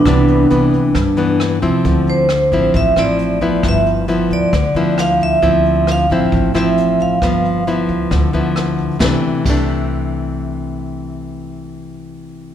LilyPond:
<<
  \new Staff \with { instrumentName = "Vibraphone" } { \time 4/4 \key c \major \tempo 4 = 134 d'2. r4 | r8 c''4. e''8 d''4. | e''8 r4 d''4. f''8 e''8~ | e''4 f''8 r4 e''4 f''8~ |
f''4 r2. | r1 | r1 | }
  \new Staff \with { instrumentName = "Alto flute" } { \time 4/4 \key c \major b2. r4 | r1 | r1 | r1 |
r1 | r1 | r1 | }
  \new Staff \with { instrumentName = "Nylon-string guitar" } { \time 4/4 \key c \major << { <e b d'>4 <e b d'>4 r8 <e b d'>4 <f c' e'>8~ | <f c' e'>4 r8 <f c' e'>4 <f c' e'>4 <f b e'>8~ | <f b e'>4 <f b e'>4 r8 <f b e'>4. | <f c' e'>4. <f c' e'>4 <f c' e'>4. |
<f b>4 <f b e'>4. <f b e'>4. | <c e a d'>8 r8 <c e a d'>2.~ | <c e a d'>1 | } \\ { c2 g,2 | d2 a,2 | g,2 d2 | d2 a,2 |
g,2 d2 | r1 | r1 | } >> }
  \new Staff \with { instrumentName = "Upright bass" } { \clef bass \time 4/4 \key c \major c,4 c,4 g,4. c,8 | d,4. a,,8 a,,8 a,,4. | g,,4. d,8 d,8 d,4. | d,4. a,,8 a,,8 a,,4. |
g,,4. d,8 d,8 d,4. | c,8 r8 c,2.~ | c,1 | }
  \new DrumStaff \with { instrumentName = "Drums" } \drummode { \time 4/4 <hh bd ss>8 hh8 hh8 <hh bd>8 <hh bd ss>8 hh8 <hh ss>8 <hh bd>8 | <hh bd>8 hh8 <hh ss>8 <hh bd>8 <hh bd>8 <hh ss>8 hh8 <hh bd>8 | <hh bd ss>8 hh8 hh8 <hh bd>8 <hh bd ss>8 hh8 <hh ss>8 <hh bd>8 | <hh bd>8 hh8 <hh ss>8 <hh bd>8 <hh bd>8 <hh ss>8 hh8 <hh bd>8 |
<hh bd ss>8 hh8 hh8 <hh bd>8 <hh bd ss>8 hh8 <hh ss>8 <hh bd>8 | <bd sn>4 <cymc bd>4 r4 r4 | r4 r4 r4 r4 | }
>>